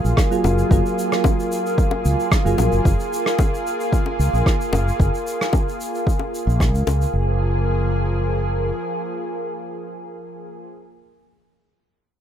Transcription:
Already playing: synth keys F#3 A#3 F4 G#4, analog synth pad A#3 F4 G#4
0.04 fretless electric bass A#1, shaker
0.17 kick, cross-stick, shaker
0.31 synth keys F#3 A#3 F4 G#4, shaker
0.44 fretless electric bass F#1, high bongo, shaker
0.58 shaker
0.70 fretless electric bass F#1, synth keys F#3 A#3 F4 G#4, kick, shaker
0.86 shaker
0.99 shaker
1.12 cross-stick, shaker
1.24 kick, high bongo, shaker
1.40 shaker
1.52 shaker
1.66 shaker
1.78 kick, shaker
1.91 high bongo
2.05 fretless electric bass C#2, shaker
2.20 shaker
2.32 kick, cross-stick, shaker
2.45 fretless electric bass F#1, synth keys F#3 A#3 F4 G#4, shaker
2.58 fretless electric bass A#1, high bongo, shaker
2.72 fretless electric bass F#1, shaker
2.85 fretless electric bass F#1, kick, shaker
3.00 shaker
3.13 shaker
3.26 cross-stick, shaker
3.39 kick, high bongo, shaker
3.55 shaker
3.67 shaker
3.80 shaker
3.93 kick, shaker
4.06 high bongo
4.19 fretless electric bass C#2, shaker
4.33 fretless electric bass A#1, shaker
4.46 kick, cross-stick, shaker
4.61 shaker
4.73 fretless electric bass F#1, high bongo, shaker
4.88 shaker
5.00 fretless electric bass F#1, kick, shaker
5.15 shaker
5.27 shaker
5.41 cross-stick, shaker
5.53 kick, high bongo, shaker
5.69 shaker
5.81 shaker
5.95 shaker
6.07 kick, shaker
6.19 high bongo
6.35 shaker
6.47 fretless electric bass A#1, shaker
6.60 kick, cross-stick, shaker
6.74 fretless electric bass C#2, shaker
6.87 fretless electric bass C#2, high bongo, shaker
7.02 shaker
7.13 fretless electric bass F#1, analog synth pad F3 A#3 G#4

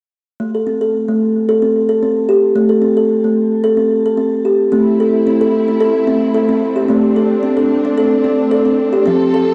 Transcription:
0.40 kalimba A3
0.55 kalimba A4
0.67 kalimba C4
0.81 kalimba A4
1.08 kalimba A3
1.49 kalimba A4
1.62 kalimba C4
1.89 kalimba A4
2.03 kalimba C4
2.29 kalimba G4
2.56 kalimba A3
2.69 kalimba A4
2.82 kalimba C4
2.97 kalimba A4
3.24 kalimba A3
3.64 kalimba A4
3.77 kalimba C4
4.06 kalimba A4
4.17 kalimba C4
4.45 kalimba G4
4.72 kalimba A3 C4, string section A3 C4 E4
5.00 kalimba A4
5.27 kalimba C4
5.41 kalimba A4
5.68 kalimba C4
5.80 kalimba A4
6.07 kalimba C4
6.34 kalimba A4
6.49 kalimba C4
6.76 kalimba G4
6.89 kalimba A3 C4, string section D4
7.16 kalimba A4
7.43 kalimba C4
7.57 kalimba A4
7.85 kalimba C4
7.98 kalimba A4
8.24 kalimba C4
8.51 kalimba A4
8.65 kalimba C4
8.93 kalimba G4
9.06 kalimba F3 C4, string section F3 A4
9.34 kalimba A4

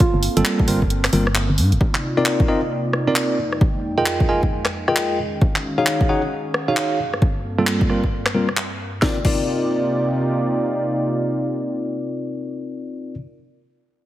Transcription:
Already playing: analog synth pad A#3 C4 A4 F5
0.00 synth pluck F4, kick, closed hi-hat
0.14 fm bass G1
0.23 open hi-hat
0.37 fm bass G1, tine electric piano G3 A#3 C4 F4 A4, closed hi-hat
0.45 clap, closed hi-hat
0.59 kick
0.68 fm bass G1, tine electric piano G3 A#3 C4 F4 A#4, open hi-hat
0.82 kick
0.90 closed hi-hat
1.04 cross-stick, clap, open hi-hat
1.13 fm bass G1, tine electric piano G3 A#3 C4 F4 A#4, open hi-hat
1.27 cross-stick
1.35 clap, closed hi-hat
1.50 fm bass G1
1.58 fm bass G2, open hi-hat
1.72 fm bass F1, closed hi-hat
1.81 analog synth pad C3 A#3 D#4 F4 D5, kick
1.95 clap
2.17 tine electric piano C4 D#4 F4 A#4 D5
2.26 clap
2.40 kick
2.48 tine electric piano C4 D#4 F4 A#4 D#5, cross-stick
2.93 cross-stick
3.07 tine electric piano C4 D#4 F4 A#4 D5
3.16 clap
3.39 analog synth pad F2 G#3 G5
3.52 cross-stick
3.61 kick
3.98 tine electric piano F4 G#4 A#4 D#5 G5
4.06 clap
4.20 kick
4.29 tine electric piano F4 G#4 A#4 D#5 G#5
4.43 kick
4.65 cross-stick, clap
4.88 tine electric piano F4 G#4 A#4 D#5 G5, cross-stick
4.96 clap
5.19 analog synth pad D#3 C#4 F#4 F5
5.42 kick
5.56 clap
5.78 tine electric piano D#4 F#4 G#4 C#5 F5
5.86 clap
6.01 kick
6.09 tine electric piano D#4 F#4 G#4 C#5 F#5
6.54 cross-stick
6.68 tine electric piano D#4 F#4 G#4 C#5 F5
6.77 clap
6.99 analog synth pad G2 A#3 C4 A4
7.14 cross-stick
7.22 kick
7.58 tine electric piano G3 A#3 C4 F4 A4
7.67 clap
7.81 kick
7.90 tine electric piano G3 A#3 C4 F4 A#4, cross-stick
8.04 kick
8.26 cross-stick, clap
8.35 tine electric piano G3 A#3 C4 F4 A#4
8.49 cross-stick
8.57 clap
9.02 analog synth pad C3 A#3 D#4 F4 G4 D5, tine electric piano C4 D#4 F4 A#4 D5, kick, snare
9.25 tine electric piano C4 D#4 F4 A#4 D5, kick, crash

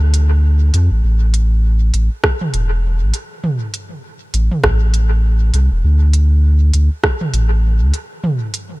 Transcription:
Already playing: sub bass D2
0.14 closed hi-hat
0.74 sub bass F2, closed hi-hat
0.91 sub bass A1
1.04 sub bass A1
1.34 closed hi-hat
1.94 sub bass A1, closed hi-hat
2.24 kick, cross-stick
2.41 mid tom
2.54 sub bass E1, closed hi-hat
3.01 sub bass A1
3.14 closed hi-hat
3.44 mid tom
3.74 closed hi-hat
4.34 sub bass A1, closed hi-hat
4.51 mid tom
4.64 sub bass A1, kick, cross-stick
4.94 closed hi-hat
5.54 sub bass C2, closed hi-hat
5.72 sub bass E1
5.84 sub bass D2
6.13 closed hi-hat
6.74 sub bass D2, closed hi-hat
7.04 kick, cross-stick
7.21 mid tom
7.33 sub bass A1, closed hi-hat
7.81 sub bass D2
7.94 closed hi-hat
8.24 mid tom
8.54 closed hi-hat

